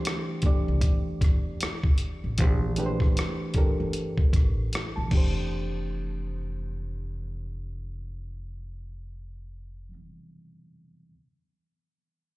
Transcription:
Already playing: E3 A3 D4 G4 C5 F5
0.05 cross-stick, closed hi-hat
0.42 E3 A3 D4 G4, muted upright bass stroke, kick, closed hi-hat
0.47 D5
0.68 C2
0.81 kick, closed hi-hat
1.21 E2, kick, cross-stick, closed hi-hat
1.61 muted upright bass stroke, cross-stick, closed hi-hat
1.84 D2, kick
1.98 closed hi-hat
2.24 A1
2.38 A#1 E3 A3 D4 G4 C5, kick, closed hi-hat
2.76 E3 A3 D4 G4 B4, closed hi-hat
2.86 C5
3.00 kick, cross-stick
3.17 cross-stick, closed hi-hat
3.54 E3 D4 G4 A4, muted upright bass stroke, kick, closed hi-hat
3.58 A#4
3.80 G1
3.93 closed hi-hat
4.18 kick
4.33 A1, kick, cross-stick, closed hi-hat
4.73 cross-stick, closed hi-hat
4.96 A#1 A5
5.08 E3 A3, kick, crash
5.12 F1 D4 G4
5.17 C5

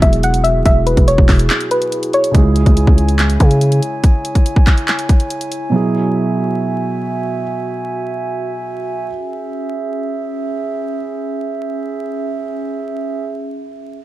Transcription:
Already playing: B2 F#3 E4 F#4 G#4
0.02 E1 E5, kick, closed hi-hat
0.13 closed hi-hat
0.23 F#5, closed hi-hat
0.34 closed hi-hat
0.44 E5, closed hi-hat
0.66 E1 E5, kick, closed hi-hat
0.86 B4, closed hi-hat
0.97 E1, kick, closed hi-hat
1.08 C#5, closed hi-hat
1.18 E1, kick
1.29 E1, kick, clap, closed hi-hat, open hi-hat
1.39 closed hi-hat
1.50 clap, closed hi-hat
1.61 closed hi-hat
1.71 B4, closed hi-hat
1.82 closed hi-hat
1.92 closed hi-hat
2.03 closed hi-hat
2.13 C#5, closed hi-hat
2.24 closed hi-hat
2.31 C#2 C#3 G#3 E4 C#5 G#5, kick, closed hi-hat
2.37 G#4
2.56 closed hi-hat
2.66 C#2, kick, closed hi-hat
2.77 closed hi-hat
2.87 C#2, kick
2.98 closed hi-hat
3.09 closed hi-hat
3.19 clap, closed hi-hat
3.30 closed hi-hat
3.40 C#3, kick, closed hi-hat
3.51 closed hi-hat
3.61 closed hi-hat
3.72 closed hi-hat
3.83 closed hi-hat
4.04 kick, closed hi-hat
4.25 closed hi-hat
4.35 kick, closed hi-hat
4.46 closed hi-hat
4.56 kick
4.67 kick, clap, closed hi-hat
4.78 closed hi-hat
4.88 clap, closed hi-hat
4.99 closed hi-hat
5.09 kick, closed hi-hat
5.20 closed hi-hat
5.30 closed hi-hat
5.41 closed hi-hat
5.52 closed hi-hat
5.70 B2 F#3 E4 F#4 E5
5.76 G#4
9.11 C#4 G#4 E5

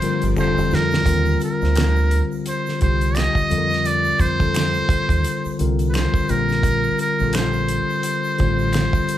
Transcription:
Already playing: F3 G3 A#3 G4 C5
0.01 D3 G3 C4 F4 A#4, closed hi-hat, shaker
0.22 G1, closed hi-hat, shaker
0.36 F1 D3 F3 G3 C4 F4 A4 C5, finger snap, shaker
0.58 F1, shaker
0.71 F2, snare, shaker
0.75 A#4
0.91 snare, shaker
1.05 D#2 D3 G3 C4 F4 A#4, kick, closed hi-hat, shaker
1.25 shaker
1.40 closed hi-hat, shaker
1.44 A#4
1.61 D2 D3 G3 C4 F4 C5, snare, shaker
1.75 finger snap, snare, closed hi-hat, shaker
1.96 shaker
2.11 closed hi-hat
2.32 shaker
2.46 C5, closed hi-hat, shaker
2.66 snare, shaker
2.80 C2 D3 G3 C4 F4 G4 C5, kick, closed hi-hat
3.01 closed hi-hat, shaker
3.15 finger snap, closed hi-hat, shaker
3.17 D#5, finger snap, snare
3.35 kick, shaker
3.49 F2 D3 G3 C4 F4 A4, closed hi-hat, shaker
3.58 A#4
3.70 snare, shaker
3.85 D5, closed hi-hat, shaker
4.04 shaker
4.19 F2 C5, kick, closed hi-hat, shaker
4.39 D3 G3 C4 F4 A4, kick, shaker
4.54 finger snap, closed hi-hat, shaker
4.56 finger snap, snare
4.74 shaker
4.89 muted fingered electric bass stroke, kick, closed hi-hat
5.09 D#2, kick, closed hi-hat, shaker
5.24 closed hi-hat, shaker
5.45 muted fingered electric bass stroke, shaker
5.59 C2 D3 G3 C4 F4 A#4, closed hi-hat
5.79 closed hi-hat, shaker
5.89 B4
5.94 C5, finger snap, snare, closed hi-hat, shaker
6.14 kick, shaker
6.28 A#1 D3 G3 C4 F4 A#4, closed hi-hat, shaker
6.49 snare, shaker
6.63 kick, closed hi-hat, shaker
6.83 shaker
6.98 A#4, closed hi-hat, shaker
7.19 A#1 D3 G3 C4 F4 A4, shaker
7.33 C5, finger snap, snare, closed hi-hat, shaker
7.53 shaker
7.68 closed hi-hat
7.90 shaker
8.03 closed hi-hat, shaker
8.24 shaker
8.38 A1 D3 G3 C4 F4 C5, kick, closed hi-hat
8.59 shaker
8.73 finger snap, closed hi-hat, shaker
8.74 finger snap, snare
8.93 kick, shaker
9.08 closed hi-hat, shaker

